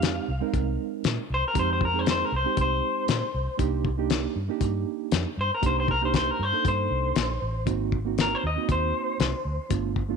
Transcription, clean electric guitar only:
Already playing: F5
1.34 C5
1.48 A#4
1.59 C5
1.73 C5
1.85 A#4
1.99 C5
2.11 C5
2.25 A#4
2.36 C5
2.61 C5
5.41 C5
5.55 A#4
5.66 C5
5.80 C5
5.91 A#4
6.05 C5
6.16 C5
6.31 A#4
6.43 C5
6.68 C5
8.21 A#4
8.35 C5
8.47 D#5
8.72 C5

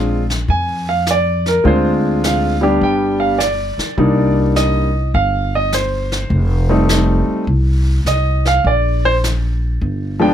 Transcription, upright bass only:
Already playing: A#1
0.48 F2
1.65 D2
2.81 G1
3.78 muted upright bass stroke
3.98 C2
5.14 G1
6.30 F1
7.28 muted upright bass stroke
7.47 C2
8.05 C2
8.64 A#1
9.81 G1

